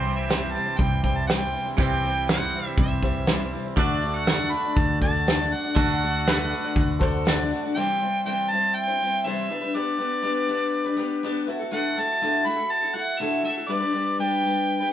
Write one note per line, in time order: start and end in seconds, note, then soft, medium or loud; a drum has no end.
0.00 0.56 C2 medium
0.00 1.76 C3 medium
0.00 1.77 E3 medium
0.00 1.77 G3 medium
0.00 0.28 G3 medium
0.00 1.77 C4 medium
0.00 0.40 G4 medium
0.00 1.78 G4 medium
0.00 0.14 C5 medium
0.00 0.40 C5 medium
0.00 0.41 E5 medium
0.04 0.28 C4 medium
0.04 0.29 E4 medium
0.04 0.29 C5 medium
0.04 open hi-hat medium
0.16 0.54 E5 medium
0.28 0.53 C3 medium
0.28 0.54 E3 medium
0.28 0.53 G3 medium
0.28 0.53 C4 medium
0.28 0.54 E4 medium
0.28 0.54 C5 medium
0.28 snare loud
0.28 open hi-hat medium
0.53 0.66 G3 medium
0.53 0.66 C4 medium
0.53 0.65 E4 medium
0.53 0.64 C5 medium
0.53 0.79 A5 loud
0.53 open hi-hat soft
0.66 1.02 G3 soft
0.66 1.04 C4 soft
0.66 1.04 E4 soft
0.66 1.03 C5 medium
0.77 1.55 C2 medium
0.77 1.02 G5 medium
0.77 kick loud
0.77 open hi-hat medium
1.03 1.28 G3 medium
1.03 1.28 C4 medium
1.03 1.28 E4 medium
1.03 1.50 G4 medium
1.03 1.50 C5 medium
1.03 1.29 C5 medium
1.03 1.51 E5 medium
1.03 1.18 G5 medium
1.03 kick medium
1.03 open hi-hat medium
1.17 1.27 A5 medium
1.27 1.40 C3 medium
1.27 1.41 E3 medium
1.27 1.41 G3 medium
1.27 1.41 C4 medium
1.27 1.40 E4 medium
1.27 1.39 C5 medium
1.27 1.74 G5 medium
1.27 snare loud
1.27 open hi-hat medium
1.40 1.50 G3 soft
1.40 1.52 C4 soft
1.40 1.52 E4 soft
1.40 1.53 C5 soft
1.52 1.65 G3 medium
1.52 1.65 C4 medium
1.52 1.64 E4 medium
1.52 1.62 C5 medium
1.52 open hi-hat medium
1.64 1.76 G3 soft
1.64 1.77 C4 soft
1.64 1.77 E4 soft
1.64 1.77 C5 soft
1.77 2.55 C2 medium
1.77 2.02 C3 medium
1.77 2.03 E3 medium
1.77 2.01 G3 medium
1.77 2.02 C4 medium
1.77 2.03 E4 medium
1.77 2.40 G4 medium
1.77 3.77 G4 medium
1.77 2.41 C5 medium
1.77 2.03 C5 medium
1.77 2.41 E5 medium
1.77 kick loud
1.77 open hi-hat medium
1.81 2.26 G5 loud
2.02 2.27 G3 medium
2.02 2.27 C4 medium
2.02 2.27 E4 medium
2.02 2.28 C5 medium
2.02 open hi-hat medium
2.27 2.52 C3 medium
2.27 2.53 E3 medium
2.27 2.51 G3 medium
2.27 2.52 C4 medium
2.27 2.53 E4 medium
2.27 2.53 C5 medium
2.27 2.75 F#5 medium
2.27 snare loud
2.27 open hi-hat medium
2.52 2.65 G3 medium
2.52 2.66 C4 medium
2.52 2.66 E4 medium
2.52 2.65 C5 medium
2.52 open hi-hat medium
2.66 3.01 G3 soft
2.66 3.02 C4 soft
2.66 3.04 E4 soft
2.66 3.03 C5 medium
2.77 3.55 C2 medium
2.77 3.50 E5 medium
2.77 kick loud
2.77 open hi-hat medium
3.02 3.28 G3 medium
3.02 3.28 C4 medium
3.02 3.29 E4 medium
3.02 3.50 G4 medium
3.02 3.50 C5 medium
3.02 3.29 C5 medium
3.02 3.50 E5 medium
3.02 kick medium
3.02 open hi-hat soft
3.26 3.40 C3 medium
3.26 3.41 E3 medium
3.26 3.41 G3 medium
3.26 3.41 C4 medium
3.26 3.39 E4 medium
3.26 snare loud
3.26 open hi-hat medium
3.30 3.39 C5 medium
3.40 3.52 G3 soft
3.40 3.53 C4 soft
3.40 3.53 E4 medium
3.40 3.53 C5 medium
3.52 3.65 G3 medium
3.52 3.66 C4 medium
3.52 3.66 E4 medium
3.52 3.64 C5 medium
3.52 open hi-hat soft
3.65 3.78 G3 soft
3.65 3.79 C4 soft
3.65 3.78 E4 soft
3.65 3.78 C5 medium
3.76 4.54 D2 medium
3.76 4.03 D3 medium
3.76 4.01 A3 medium
3.76 4.02 D4 medium
3.76 4.39 F#4 medium
3.76 4.03 F#4 medium
3.76 4.40 A4 medium
3.76 4.17 D5 medium
3.76 4.41 D5 medium
3.76 4.04 D5 medium
3.76 kick loud
3.76 open hi-hat medium
4.02 4.27 A3 medium
4.02 4.27 D4 medium
4.02 4.28 F#4 medium
4.02 4.29 D5 medium
4.02 open hi-hat soft
4.16 4.52 F#5 loud
4.26 4.53 D3 medium
4.26 4.50 A3 medium
4.26 4.51 D4 medium
4.26 4.53 F#4 medium
4.26 4.53 D5 medium
4.26 snare loud
4.26 open hi-hat medium
4.51 4.64 A3 medium
4.51 4.65 D4 medium
4.51 4.65 F#4 medium
4.51 4.63 D5 medium
4.51 4.79 B5 loud
4.51 open hi-hat soft
4.65 5.01 D4 soft
4.65 5.02 F#4 soft
4.65 5.02 D5 soft
4.76 5.54 D2 medium
4.76 5.01 A5 loud
4.76 kick loud
4.76 open hi-hat medium
5.01 5.27 A3 medium
5.01 5.27 D4 medium
5.01 5.48 F#4 medium
5.01 5.28 F#4 medium
5.01 5.49 A4 medium
5.01 5.49 D5 medium
5.01 5.28 D5 medium
5.01 5.55 A5 loud
5.01 kick medium
5.01 open hi-hat soft
5.27 5.40 D3 medium
5.27 5.40 A3 medium
5.27 5.40 D4 medium
5.27 5.40 F#4 medium
5.27 5.38 D5 medium
5.27 snare loud
5.27 open hi-hat medium
5.39 5.52 D4 soft
5.39 5.53 F#4 medium
5.39 5.52 D5 medium
5.51 5.64 A3 medium
5.51 5.65 D4 medium
5.51 5.65 F#4 medium
5.51 5.64 D5 medium
5.51 7.27 F#5 loud
5.51 open hi-hat medium
5.65 5.77 D4 soft
5.65 5.78 F#4 soft
5.65 5.77 D5 medium
5.75 6.53 D2 medium
5.75 6.02 D3 medium
5.75 6.01 A3 medium
5.75 6.02 D4 medium
5.75 6.39 F#4 medium
5.75 6.03 F#4 medium
5.75 6.39 A4 medium
5.75 6.40 D5 medium
5.75 6.03 D5 medium
5.75 kick loud
5.75 open hi-hat medium
6.01 6.27 A3 medium
6.01 6.27 D4 medium
6.01 6.27 F#4 medium
6.01 open hi-hat medium
6.06 6.28 D5 medium
6.26 6.52 D3 medium
6.26 6.51 A3 medium
6.26 6.52 D4 medium
6.26 6.53 F#4 loud
6.26 7.00 B4 medium
6.26 6.53 D5 medium
6.26 snare loud
6.26 open hi-hat medium
6.51 6.64 A3 medium
6.51 6.65 D4 medium
6.51 6.64 F#4 medium
6.51 open hi-hat soft
6.55 6.63 D5 medium
6.64 7.00 D4 soft
6.64 7.01 F#4 medium
6.64 7.02 D5 medium
6.76 7.53 D2 loud
6.76 kick loud
6.76 open hi-hat medium
6.99 7.25 A3 medium
6.99 7.25 D4 medium
6.99 7.47 F#4 medium
6.99 7.26 F#4 medium
6.99 7.47 A4 medium
6.99 7.26 A4 medium
6.99 7.48 C5 medium
6.99 7.26 D5 medium
6.99 kick medium
6.99 open hi-hat medium
7.25 7.38 D3 medium
7.25 7.39 A3 loud
7.25 7.39 D4 medium
7.25 7.63 D4 medium
7.25 7.39 F#4 medium
7.25 7.38 D5 loud
7.25 snare loud
7.25 open hi-hat medium
7.39 7.50 D4 soft
7.39 7.51 F#4 medium
7.39 7.52 D5 medium
7.50 7.63 A3 medium
7.50 7.64 D4 medium
7.50 7.63 F#4 medium
7.50 7.62 D5 medium
7.50 open hi-hat medium
7.63 7.76 D4 medium
7.63 7.77 F#4 medium
7.63 7.76 D5 medium
7.74 8.01 C3 medium
7.74 8.01 E3 medium
7.74 7.98 G3 medium
7.74 8.00 C4 medium
7.74 8.01 E4 medium
7.74 8.02 C5 medium
7.74 8.21 G5 loud
8.00 8.25 G3 medium
8.00 8.25 C4 medium
8.00 8.26 E4 medium
8.00 8.26 C5 medium
8.25 8.50 C3 medium
8.25 8.50 E3 medium
8.25 8.51 G3 medium
8.25 8.51 C4 medium
8.25 8.51 E4 medium
8.25 8.51 C5 medium
8.25 8.51 G5 loud
8.50 8.88 G3 medium
8.50 8.89 C4 medium
8.50 8.88 E4 medium
8.50 8.76 A5 loud
8.54 8.86 C5 medium
8.74 9.27 G5 loud
8.88 9.00 G3 soft
8.88 9.01 C4 soft
8.88 9.01 E4 medium
8.88 9.00 C5 medium
9.01 9.25 G3 medium
9.01 9.25 C4 medium
9.01 9.26 E4 medium
9.01 9.26 C5 medium
9.25 9.50 C3 medium
9.25 9.50 E3 medium
9.25 9.49 G3 medium
9.25 9.50 C4 medium
9.25 9.51 E4 medium
9.25 9.51 C5 loud
9.25 9.77 E5 medium
9.49 9.62 B3 medium
9.49 9.62 D4 medium
9.49 9.62 G4 medium
9.49 9.60 B4 medium
9.62 9.73 D4 soft
9.62 9.74 G4 soft
9.62 9.74 B4 medium
9.74 9.97 B3 medium
9.74 9.98 D4 medium
9.74 9.99 G4 medium
9.74 10.00 B4 medium
9.74 11.48 D5 loud
9.98 10.21 B3 medium
9.98 10.22 D4 medium
9.98 10.23 G4 medium
9.98 10.24 B4 medium
10.22 10.47 B3 medium
10.22 10.48 D4 medium
10.22 10.49 G4 medium
10.22 10.49 B4 medium
10.48 10.85 B3 medium
10.48 10.86 D4 medium
10.48 10.85 G4 medium
10.48 10.83 B4 medium
10.84 10.96 D4 medium
10.84 10.97 G4 medium
10.84 10.98 B4 medium
10.96 11.22 B3 medium
10.96 11.22 D4 medium
10.96 11.23 G4 medium
10.96 11.24 B4 medium
11.23 11.46 B3 loud
11.23 11.47 D4 loud
11.23 11.49 G4 loud
11.23 11.49 B4 loud
11.47 11.60 A3 medium
11.47 11.60 E4 medium
11.47 11.59 F#4 medium
11.47 11.58 A4 medium
11.59 11.71 E4 soft
11.59 11.71 F#4 soft
11.59 11.71 A4 medium
11.71 11.96 D3 medium
11.71 11.95 A3 medium
11.71 11.96 E4 medium
11.71 11.97 F#4 medium
11.71 11.97 A4 medium
11.71 12.01 F#5 medium
11.96 12.20 A3 medium
11.96 12.21 E4 medium
11.96 12.21 F#4 medium
11.96 12.22 A4 medium
11.96 12.47 A5 loud
12.21 12.46 D3 medium
12.21 12.44 A3 medium
12.21 12.46 E4 medium
12.21 12.46 F#4 medium
12.21 12.47 A4 medium
12.45 12.58 A3 medium
12.45 12.59 E4 medium
12.45 12.57 F#4 medium
12.45 12.55 A4 medium
12.45 12.73 B5 loud
12.56 12.83 E4 soft
12.56 12.82 F#4 soft
12.56 12.80 A4 medium
12.71 12.96 A5 loud
12.81 12.94 E4 soft
12.81 12.95 F#4 medium
12.81 12.95 A4 medium
12.94 13.19 A3 medium
12.94 13.20 E4 medium
12.94 13.20 F#4 medium
12.94 13.21 A4 medium
12.94 13.21 F#5 medium
13.19 13.45 D3 medium
13.19 13.43 A3 medium
13.19 13.44 E4 medium
13.19 13.45 F#4 medium
13.19 13.46 A4 medium
13.19 13.44 E5 medium
13.44 13.57 A3 medium
13.44 13.58 E4 medium
13.44 13.57 F#4 medium
13.44 13.56 A4 medium
13.44 13.70 E5 medium
13.57 13.69 E4 soft
13.57 13.69 F#4 medium
13.57 13.70 A4 medium
13.68 13.82 G3 medium
13.68 13.82 D4 medium
13.68 13.81 G4 medium
13.68 13.79 B4 medium
13.68 14.19 D5 loud
13.80 13.92 D4 soft
13.80 13.93 G4 soft
13.80 13.94 B4 medium
13.92 14.17 G3 medium
13.92 14.18 D4 medium
13.92 14.18 G4 medium
13.92 14.19 B4 medium
14.18 14.42 G3 medium
14.18 14.43 D4 medium
14.18 14.44 G4 medium
14.18 14.45 B4 medium
14.18 14.90 G5 loud
14.43 14.81 G3 medium
14.43 14.81 D4 medium
14.43 14.81 G4 medium
14.43 14.79 B4 medium
14.80 14.93 D4 soft
14.80 14.93 G4 medium
14.80 14.93 B4 medium